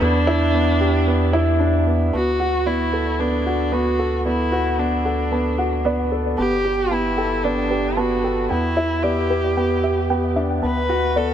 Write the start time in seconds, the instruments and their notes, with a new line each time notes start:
0.01 analog synth bass E2, grand piano B3, viola D4
0.27 grand piano E4
0.54 grand piano B3
0.81 grand piano G4
1.07 grand piano B3
1.33 grand piano E4
1.60 grand piano D4
1.87 grand piano B3
2.13 analog synth bass D2, grand piano B3, viola F#4, synth arpeggio sound A5
2.40 grand piano F#4, synth arpeggio sound F#5
2.66 grand piano B3, viola E4, synth arpeggio sound D5
2.93 grand piano A4, synth arpeggio sound B4
3.19 grand piano B3, viola D4, synth arpeggio sound A5
3.46 grand piano F#4, synth arpeggio sound F#5
3.72 grand piano B3, viola F#4, synth arpeggio sound A5
3.99 grand piano A4, synth arpeggio sound F#5
4.26 grand piano B3, viola E4, synth arpeggio sound D5
4.52 grand piano F#4, synth arpeggio sound B4
4.79 grand piano B3, viola D4, synth arpeggio sound A5
5.05 grand piano A4, synth arpeggio sound F#5
5.32 grand piano B3, synth arpeggio sound A5
5.58 grand piano F#4, synth arpeggio sound F#5
5.85 grand piano B3, synth arpeggio sound D5
6.12 grand piano A4, synth arpeggio sound B4
6.38 analog synth bass G1, grand piano B3, viola G4, synth arpeggio sound A5
6.65 grand piano G4, synth arpeggio sound G5
6.91 grand piano B3, viola E4, synth arpeggio sound A5
7.18 grand piano A4, synth arpeggio sound G5
7.44 grand piano B3, viola D4, synth arpeggio sound D5
7.71 grand piano G4, synth arpeggio sound B4
7.97 grand piano B3, viola F#4, synth arpeggio sound A5
8.24 grand piano A4, synth arpeggio sound G5
8.50 analog synth bass E2, grand piano B3, viola E4, synth arpeggio sound G5
8.77 grand piano E4, synth arpeggio sound E5
9.03 grand piano B3, viola G4, synth arpeggio sound D5
9.30 grand piano G4, synth arpeggio sound B4
9.57 grand piano B3, synth arpeggio sound G5
9.83 grand piano G4, synth arpeggio sound E5
10.10 grand piano B3, synth arpeggio sound G5
10.36 grand piano D4, synth arpeggio sound E5
10.62 analog synth bass D2, grand piano B3, viola B4, synth arpeggio sound A5
10.89 grand piano F#4, synth arpeggio sound F#5
11.16 grand piano B3, viola A4, synth arpeggio sound D5